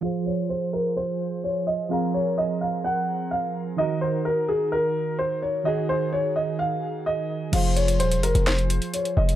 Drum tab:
CC |----------------|----------------|----------------|----------------|
HH |----------------|----------------|----------------|----------------|
CP |----------------|----------------|----------------|----------------|
SD |----------------|----------------|----------------|----------------|

CC |x---------------|
HH |x-xxxxxxxxxxxx-x|
CP |--------x-------|
SD |--------o-------|